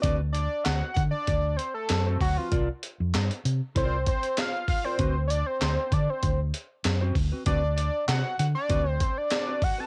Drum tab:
HH |x-x-x-x-x-x-x-o-|x-x-xxx-x-xxx-o-|x-x-x-x-x-x-x-o-|x-x-x-x-x-x-x-o-|
CP |----x-------x---|----x-------x---|----x-------x---|----x-------x---|
SD |----o-------o---|----o-------o---|----o-------o---|----o-------o---|
BD |o-----o-o-----o-|o-------o-o---o-|o-----o-o-----o-|o-------o-o---o-|